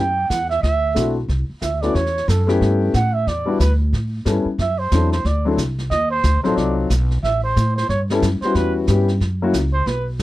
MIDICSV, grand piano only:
0, 0, Header, 1, 2, 480
1, 0, Start_track
1, 0, Tempo, 329852
1, 917, Time_signature, 4, 2, 24, 8
1, 14879, End_track
2, 0, Start_track
2, 0, Title_t, "Grand piano"
2, 0, Program_c, 0, 0
2, 1376, Note_on_c, 0, 57, 59
2, 1386, Note_on_c, 0, 62, 47
2, 1391, Note_on_c, 0, 60, 47
2, 1398, Note_on_c, 0, 64, 50
2, 1402, Note_on_c, 0, 66, 62
2, 1654, Note_off_c, 0, 57, 0
2, 1659, Note_off_c, 0, 62, 0
2, 1662, Note_off_c, 0, 60, 0
2, 1665, Note_off_c, 0, 64, 0
2, 1667, Note_off_c, 0, 66, 0
2, 2654, Note_on_c, 0, 57, 61
2, 2658, Note_on_c, 0, 61, 52
2, 2661, Note_on_c, 0, 59, 53
2, 2671, Note_on_c, 0, 64, 51
2, 2674, Note_on_c, 0, 66, 62
2, 2821, Note_off_c, 0, 57, 0
2, 2823, Note_off_c, 0, 61, 0
2, 2825, Note_off_c, 0, 59, 0
2, 2830, Note_off_c, 0, 64, 0
2, 2831, Note_off_c, 0, 66, 0
2, 3594, Note_on_c, 0, 57, 80
2, 3607, Note_on_c, 0, 59, 73
2, 3614, Note_on_c, 0, 61, 69
2, 3614, Note_on_c, 0, 64, 68
2, 3621, Note_on_c, 0, 67, 86
2, 4234, Note_off_c, 0, 57, 0
2, 4241, Note_off_c, 0, 59, 0
2, 4244, Note_off_c, 0, 61, 0
2, 4245, Note_off_c, 0, 64, 0
2, 4248, Note_off_c, 0, 67, 0
2, 5026, Note_on_c, 0, 55, 66
2, 5036, Note_on_c, 0, 62, 58
2, 5038, Note_on_c, 0, 59, 59
2, 5050, Note_on_c, 0, 64, 59
2, 5059, Note_on_c, 0, 66, 64
2, 5209, Note_off_c, 0, 55, 0
2, 5214, Note_off_c, 0, 62, 0
2, 5215, Note_off_c, 0, 59, 0
2, 5221, Note_off_c, 0, 64, 0
2, 5225, Note_off_c, 0, 66, 0
2, 6189, Note_on_c, 0, 55, 62
2, 6195, Note_on_c, 0, 59, 60
2, 6202, Note_on_c, 0, 61, 61
2, 6212, Note_on_c, 0, 69, 69
2, 6213, Note_on_c, 0, 64, 58
2, 6464, Note_off_c, 0, 55, 0
2, 6467, Note_off_c, 0, 59, 0
2, 6471, Note_off_c, 0, 61, 0
2, 6475, Note_off_c, 0, 69, 0
2, 6476, Note_off_c, 0, 64, 0
2, 7158, Note_on_c, 0, 54, 56
2, 7163, Note_on_c, 0, 60, 55
2, 7167, Note_on_c, 0, 62, 55
2, 7179, Note_on_c, 0, 64, 55
2, 7185, Note_on_c, 0, 69, 59
2, 7429, Note_off_c, 0, 54, 0
2, 7431, Note_off_c, 0, 60, 0
2, 7433, Note_off_c, 0, 62, 0
2, 7439, Note_off_c, 0, 64, 0
2, 7443, Note_off_c, 0, 69, 0
2, 7933, Note_on_c, 0, 54, 69
2, 7937, Note_on_c, 0, 60, 66
2, 7946, Note_on_c, 0, 62, 67
2, 7954, Note_on_c, 0, 64, 58
2, 7966, Note_on_c, 0, 69, 70
2, 8103, Note_off_c, 0, 54, 0
2, 8105, Note_off_c, 0, 60, 0
2, 8110, Note_off_c, 0, 62, 0
2, 8114, Note_off_c, 0, 64, 0
2, 8120, Note_off_c, 0, 69, 0
2, 9368, Note_on_c, 0, 54, 79
2, 9376, Note_on_c, 0, 63, 67
2, 9386, Note_on_c, 0, 60, 74
2, 9395, Note_on_c, 0, 65, 71
2, 9397, Note_on_c, 0, 69, 81
2, 10002, Note_off_c, 0, 54, 0
2, 10006, Note_off_c, 0, 63, 0
2, 10011, Note_off_c, 0, 60, 0
2, 10015, Note_off_c, 0, 65, 0
2, 10016, Note_off_c, 0, 69, 0
2, 11802, Note_on_c, 0, 55, 80
2, 11804, Note_on_c, 0, 59, 70
2, 11813, Note_on_c, 0, 61, 71
2, 11816, Note_on_c, 0, 64, 72
2, 11827, Note_on_c, 0, 69, 87
2, 11956, Note_off_c, 0, 55, 0
2, 11957, Note_off_c, 0, 59, 0
2, 11961, Note_off_c, 0, 61, 0
2, 11963, Note_off_c, 0, 64, 0
2, 11968, Note_off_c, 0, 69, 0
2, 12282, Note_on_c, 0, 55, 60
2, 12289, Note_on_c, 0, 59, 58
2, 12294, Note_on_c, 0, 61, 52
2, 12298, Note_on_c, 0, 64, 55
2, 12305, Note_on_c, 0, 66, 72
2, 12896, Note_off_c, 0, 55, 0
2, 12900, Note_off_c, 0, 59, 0
2, 12903, Note_off_c, 0, 61, 0
2, 12905, Note_off_c, 0, 64, 0
2, 12908, Note_off_c, 0, 66, 0
2, 12932, Note_on_c, 0, 55, 60
2, 12938, Note_on_c, 0, 59, 54
2, 12945, Note_on_c, 0, 61, 51
2, 12953, Note_on_c, 0, 67, 72
2, 12955, Note_on_c, 0, 64, 54
2, 13193, Note_off_c, 0, 55, 0
2, 13196, Note_off_c, 0, 59, 0
2, 13199, Note_off_c, 0, 61, 0
2, 13204, Note_off_c, 0, 64, 0
2, 13204, Note_off_c, 0, 67, 0
2, 13711, Note_on_c, 0, 54, 66
2, 13712, Note_on_c, 0, 58, 68
2, 13725, Note_on_c, 0, 64, 67
2, 13730, Note_on_c, 0, 61, 67
2, 13734, Note_on_c, 0, 66, 78
2, 13868, Note_off_c, 0, 54, 0
2, 13869, Note_off_c, 0, 58, 0
2, 13876, Note_off_c, 0, 64, 0
2, 13878, Note_off_c, 0, 61, 0
2, 13880, Note_off_c, 0, 66, 0
2, 14879, End_track
0, 0, End_of_file